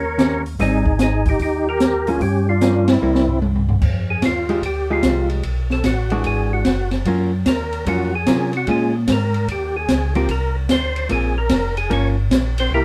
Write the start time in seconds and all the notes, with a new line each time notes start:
Already playing: D#2 A#4 C#5
0.18 D#3 A#3 C#4 G4, snare, closed hi-hat
0.46 open hi-hat
0.59 G#1 G3 C4 D#4 G#4, kick, snare, open hi-hat
0.86 kick
0.99 D#4 G#4, snare, closed hi-hat
1.26 G4, kick, open hi-hat
1.30 D#4
1.39 D#2 D#4 G4, kick, open hi-hat
1.69 G4 A#4
1.80 snare, closed hi-hat
2.07 F3 A#3 C#4 F4 G#4, open hi-hat
2.20 G2 C#4 G4, kick, open hi-hat
2.49 D4 F4
2.61 F3 A#3 C#4, snare, closed hi-hat
2.88 C4 E4, snare, ride
3.02 C2 G3 A#3 E4
3.15 snare
3.28 floor tom
3.42 high tom
3.55 floor tom
3.69 floor tom
3.82 F2, kick, crash
4.10 G#4
4.22 D#2 F4, kick, snare, hi-hat pedal, ride
4.49 F3 G#3 D#4 G4, ride
4.63 D2 G4, kick, ride
4.90 F3 G#3 D#4 F4 G4
5.03 C2, kick, snare, hi-hat pedal, ride
5.30 ride
5.43 B1, kick, ride
5.70 A4, snare
5.84 A1 F#4, kick, snare, hi-hat pedal, ride
6.10 E3 G#3 D4 F#4, ride
6.24 G#1 G#4, kick, ride
6.53 F#4
6.65 F#1, kick, snare, hi-hat pedal, ride
6.91 snare, ride
7.05 F#2 F#3 A#3 C#4 F4, kick, ride
7.46 D#2 A#4, kick, snare, hi-hat pedal, ride
7.73 ride
7.86 F2 F#3 A#3 C#4 F4 F#4, kick, ride
8.15 G#4
8.26 C3 F#3 A#3 C#4 F4, kick, snare, hi-hat pedal, ride
8.53 ride
8.57 F#4
8.67 A#2 G#3 C#4 F4, kick, ride
8.71 G#4
9.08 G#2, kick, snare, hi-hat pedal, ride
9.12 A#4
9.34 ride
9.48 D#2 G4, kick, ride
9.77 G#4
9.88 C#2, kick, snare, hi-hat pedal, ride
10.15 F3 A#3 C4 G4, ride
10.29 C2 A#4, kick, ride
10.69 D2 C5, kick, snare, hi-hat pedal, ride
10.96 ride
11.09 A#1 F3 A#3 C4 G#4, kick, ride
11.38 A#4
11.49 F1, kick, snare, hi-hat pedal, ride
11.77 G#4, ride
11.90 G1 F3 A#3 C#4 C#5, kick, ride
12.30 A#1, kick, snare, hi-hat pedal, ride
12.58 C4 C5, ride
12.71 C2 A#3 E4 G4 A#4, kick